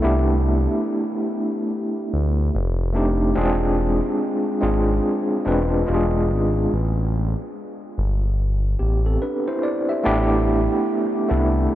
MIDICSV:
0, 0, Header, 1, 3, 480
1, 0, Start_track
1, 0, Tempo, 833333
1, 20, Time_signature, 4, 2, 24, 8
1, 6768, End_track
2, 0, Start_track
2, 0, Title_t, "Tine electric piano"
2, 0, Program_c, 0, 4
2, 0, Control_c, 0, 64, 127
2, 10, Note_on_c, 0, 57, 75
2, 15, Note_on_c, 0, 59, 65
2, 19, Note_on_c, 0, 62, 68
2, 25, Note_on_c, 0, 64, 68
2, 28, Note_on_c, 0, 67, 85
2, 29, Control_c, 0, 64, 0
2, 132, Control_c, 0, 64, 127
2, 795, Note_off_c, 0, 57, 0
2, 797, Note_off_c, 0, 59, 0
2, 799, Note_off_c, 0, 62, 0
2, 802, Note_off_c, 0, 64, 0
2, 803, Note_off_c, 0, 67, 0
2, 1467, Control_c, 0, 64, 0
2, 1563, Control_c, 0, 64, 127
2, 1689, Note_on_c, 0, 57, 75
2, 1696, Note_on_c, 0, 60, 70
2, 1699, Note_on_c, 0, 62, 69
2, 1702, Note_on_c, 0, 63, 70
2, 1706, Note_on_c, 0, 67, 80
2, 1889, Note_off_c, 0, 57, 0
2, 1892, Note_off_c, 0, 60, 0
2, 1894, Note_off_c, 0, 62, 0
2, 1895, Note_off_c, 0, 63, 0
2, 1897, Note_off_c, 0, 67, 0
2, 1930, Note_on_c, 0, 56, 90
2, 1932, Note_on_c, 0, 60, 88
2, 1936, Note_on_c, 0, 62, 84
2, 1940, Note_on_c, 0, 65, 83
2, 1945, Note_on_c, 0, 68, 96
2, 1947, Control_c, 0, 64, 0
2, 2062, Control_c, 0, 64, 127
2, 2490, Note_off_c, 0, 56, 0
2, 2491, Note_off_c, 0, 60, 0
2, 2492, Note_off_c, 0, 62, 0
2, 2495, Note_off_c, 0, 65, 0
2, 2497, Note_off_c, 0, 68, 0
2, 2654, Note_on_c, 0, 56, 71
2, 2658, Note_on_c, 0, 60, 67
2, 2662, Note_on_c, 0, 62, 63
2, 2667, Note_on_c, 0, 65, 68
2, 2669, Note_on_c, 0, 68, 74
2, 3045, Note_off_c, 0, 56, 0
2, 3048, Note_off_c, 0, 60, 0
2, 3050, Note_off_c, 0, 62, 0
2, 3052, Note_off_c, 0, 65, 0
2, 3053, Note_off_c, 0, 68, 0
2, 3138, Note_on_c, 0, 56, 71
2, 3140, Note_on_c, 0, 60, 66
2, 3142, Note_on_c, 0, 62, 64
2, 3148, Note_on_c, 0, 65, 64
2, 3153, Note_on_c, 0, 71, 76
2, 3369, Note_off_c, 0, 56, 0
2, 3376, Note_off_c, 0, 62, 0
2, 3376, Note_on_c, 0, 56, 70
2, 3378, Note_off_c, 0, 65, 0
2, 3378, Note_on_c, 0, 59, 65
2, 3380, Note_off_c, 0, 60, 0
2, 3383, Note_on_c, 0, 62, 67
2, 3385, Note_on_c, 0, 65, 68
2, 3387, Note_off_c, 0, 71, 0
2, 3387, Control_c, 0, 64, 0
2, 3390, Note_on_c, 0, 67, 66
2, 3426, Note_on_c, 0, 68, 84
2, 3432, Note_off_c, 0, 67, 0
2, 3501, Control_c, 0, 64, 127
2, 3784, Note_off_c, 0, 56, 0
2, 3786, Note_off_c, 0, 59, 0
2, 3788, Note_off_c, 0, 62, 0
2, 3789, Note_off_c, 0, 65, 0
2, 3810, Note_off_c, 0, 68, 0
2, 3868, Control_c, 0, 64, 0
2, 3973, Control_c, 0, 64, 127
2, 5065, Note_on_c, 0, 67, 54
2, 5068, Note_on_c, 0, 59, 46
2, 5203, Note_off_c, 0, 67, 0
2, 5205, Note_off_c, 0, 59, 0
2, 5218, Note_on_c, 0, 69, 59
2, 5220, Note_on_c, 0, 60, 49
2, 5301, Note_off_c, 0, 69, 0
2, 5302, Note_off_c, 0, 60, 0
2, 5310, Note_on_c, 0, 71, 57
2, 5312, Note_on_c, 0, 62, 49
2, 5446, Note_off_c, 0, 71, 0
2, 5447, Note_off_c, 0, 62, 0
2, 5458, Note_on_c, 0, 72, 64
2, 5459, Note_on_c, 0, 64, 54
2, 5541, Note_off_c, 0, 64, 0
2, 5541, Note_off_c, 0, 72, 0
2, 5549, Note_on_c, 0, 74, 61
2, 5685, Note_off_c, 0, 74, 0
2, 5698, Note_on_c, 0, 76, 55
2, 5703, Note_on_c, 0, 67, 46
2, 5780, Note_on_c, 0, 57, 90
2, 5783, Note_on_c, 0, 59, 86
2, 5787, Control_c, 0, 64, 0
2, 5789, Note_off_c, 0, 67, 0
2, 5790, Note_on_c, 0, 62, 86
2, 5792, Note_on_c, 0, 64, 87
2, 5796, Note_on_c, 0, 67, 101
2, 5889, Control_c, 0, 64, 127
2, 5921, Note_off_c, 0, 76, 0
2, 6335, Note_off_c, 0, 57, 0
2, 6336, Note_off_c, 0, 59, 0
2, 6339, Note_off_c, 0, 62, 0
2, 6340, Note_off_c, 0, 64, 0
2, 6343, Note_off_c, 0, 67, 0
2, 6500, Note_on_c, 0, 57, 72
2, 6504, Note_on_c, 0, 59, 71
2, 6507, Note_on_c, 0, 62, 69
2, 6510, Note_on_c, 0, 64, 67
2, 6515, Note_on_c, 0, 69, 79
2, 6768, Note_off_c, 0, 57, 0
2, 6768, Note_off_c, 0, 59, 0
2, 6768, Note_off_c, 0, 62, 0
2, 6768, Note_off_c, 0, 64, 0
2, 6768, Note_off_c, 0, 69, 0
2, 6768, End_track
3, 0, Start_track
3, 0, Title_t, "Analog synth bass"
3, 0, Program_c, 1, 38
3, 26, Note_on_c, 1, 36, 102
3, 388, Note_off_c, 1, 36, 0
3, 1229, Note_on_c, 1, 38, 85
3, 1442, Note_off_c, 1, 38, 0
3, 1467, Note_on_c, 1, 29, 92
3, 1921, Note_off_c, 1, 29, 0
3, 1946, Note_on_c, 1, 28, 94
3, 2308, Note_off_c, 1, 28, 0
3, 2665, Note_on_c, 1, 32, 89
3, 2880, Note_off_c, 1, 32, 0
3, 3148, Note_on_c, 1, 28, 83
3, 3361, Note_off_c, 1, 28, 0
3, 3390, Note_on_c, 1, 28, 92
3, 3630, Note_on_c, 1, 32, 91
3, 3639, Note_off_c, 1, 28, 0
3, 3842, Note_off_c, 1, 32, 0
3, 3875, Note_on_c, 1, 33, 98
3, 4233, Note_off_c, 1, 33, 0
3, 4596, Note_on_c, 1, 31, 88
3, 5045, Note_off_c, 1, 31, 0
3, 5075, Note_on_c, 1, 33, 86
3, 5285, Note_off_c, 1, 33, 0
3, 5795, Note_on_c, 1, 33, 100
3, 6153, Note_off_c, 1, 33, 0
3, 6515, Note_on_c, 1, 36, 88
3, 6725, Note_off_c, 1, 36, 0
3, 6768, End_track
0, 0, End_of_file